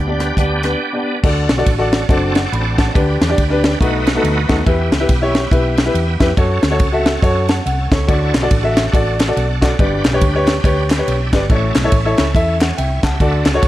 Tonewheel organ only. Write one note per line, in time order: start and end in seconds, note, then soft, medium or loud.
0.00 0.38 D4 medium
0.00 0.37 G4 medium
0.00 0.35 B4 medium
0.38 0.63 B3 medium
0.38 0.63 D4 medium
0.38 0.63 G4 medium
0.64 1.20 B3 soft
0.64 1.20 D4 soft
0.64 1.04 G4 medium
1.24 2.08 D4 medium
1.24 2.08 F#4 medium
1.24 1.30 G4 medium
1.29 2.08 A4 medium
2.09 2.93 C4 medium
2.09 2.93 D4 medium
2.09 2.93 F#4 medium
2.09 2.93 A4 medium
2.09 2.93 D5 loud
2.95 3.79 D4 medium
2.95 3.79 G4 medium
2.95 3.79 B4 medium
3.81 4.65 A3 medium
3.81 4.65 B3 medium
3.81 4.65 D#4 medium
3.81 4.65 F#4 medium
3.81 4.65 B4 loud
4.68 6.35 B3 medium
4.68 6.35 E4 medium
4.68 6.35 G4 medium
6.38 7.64 C#4 medium
6.38 7.64 F#4 medium
6.38 7.63 A4 medium
7.67 7.91 C#4 medium
7.67 7.91 A4 medium
7.93 8.33 E4 soft
7.93 8.33 C#5 medium
8.09 9.76 D4 medium
8.09 9.34 F#4 medium
8.09 8.15 G#4 medium
8.14 9.35 A4 medium
9.36 9.61 A4 medium
9.36 9.61 F#5 medium
9.62 10.03 F#4 medium
9.62 10.03 D5 medium
9.78 11.46 D4 medium
9.78 10.88 G4 medium
9.78 10.88 B4 medium
10.91 11.07 B4 medium
10.91 11.06 G5 medium
11.07 11.32 G4 medium
11.07 11.32 E5 medium
11.32 11.74 F#4 medium
11.32 11.73 D5 medium
11.50 12.59 C#4 medium
11.50 12.59 E4 medium
11.50 12.59 A4 medium
12.61 12.77 C#4 medium
12.61 12.77 A4 medium
12.76 13.02 E4 medium
12.76 13.01 C#5 medium
13.03 13.19 G4 medium
13.03 13.44 E5 medium
13.20 13.68 D4 medium
13.20 13.68 F#4 medium
13.20 13.26 G4 medium
13.25 13.68 A4 medium